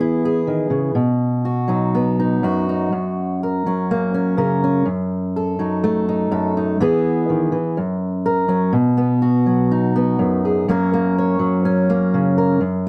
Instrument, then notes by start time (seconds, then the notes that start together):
steel-string acoustic guitar
Already playing: E3 B3 G#4
0.01 E4
0.25 G#4
0.47 D#3
0.70 C#3
0.95 B2
1.45 F#4
1.68 F#3 D#4
1.95 B3
2.20 D#4
2.43 F#2 F#4
2.69 D#4
2.92 F#2
3.43 A#4
3.66 F#3 C#4
3.91 A#3
4.14 C#4
4.37 C#3 A#4
4.64 C#4
4.86 F#2
5.36 A4
5.59 F#3 D#4
5.84 A3
6.09 D#4
6.31 F#2 A4
6.57 D#4
6.80 E3 B3 E4 G#4
7.29 D#3
7.52 E3
7.77 F#2
8.26 A#4
8.48 F#3 C#4
8.73 B2
8.97 B3
9.22 F#4
9.46 F#3
9.71 D#4
9.96 B3
10.19 F#2
10.45 G#4
10.68 F#2 F#3 A#3 C#4 A#4
10.94 A#3
11.18 C#5
11.39 F#3
11.65 C#4
11.90 A#3
12.14 C#3
12.38 A#4
12.61 F#2